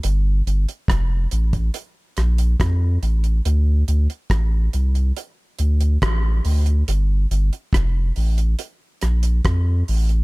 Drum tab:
HH |x-xxx-xxx-xxx-xx|x-xxx-xxx-xxx-ox|x-xxx-oxx-xxx-ox|
SD |----r-----r-r---|----r-------r---|----r-----r-r---|
BD |----o--o----o---|----o-------o---|----o-------o---|